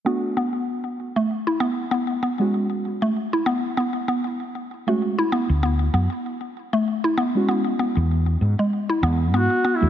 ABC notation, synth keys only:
X:1
M:4/4
L:1/16
Q:"Swing 16ths" 1/4=97
K:Bdor
V:1 name="Synth keys"
[A,DF]2 z12 z [G,CF]- | [G,CF] z12 z2 [G,CF]- | [G,CF] z12 z2 [G,CF]- | [G,CF] z12 z2 [A,DF] |]